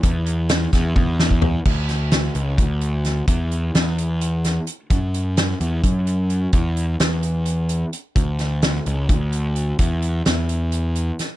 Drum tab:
CC |--------------|x-------------|--------------|--------------|
HH |x-x-x-x-------|--x-x-x-x-x-x-|x-x-x-x-x-x-x-|x-x-x-x-x-x-x-|
SD |----o-o---o---|--o-o-------o-|----o-----o---|----o---------|
T1 |--------o-----|--------------|--------------|--------------|
FT |------------o-|--------------|--------------|--------------|
BD |o-----o-o--o--|o-------o-----|o-------------|o-------o-----|

CC |--------------|--------------|--------------|
HH |x-x-x-x-x-x-x-|x-x-x-x-x-x-x-|x-x-x-x-x-x-x-|
SD |----o---------|--o-o---------|----o-------o-|
T1 |--------------|--------------|--------------|
FT |--------------|--------------|--------------|
BD |o-------------|o-------o-----|o-------------|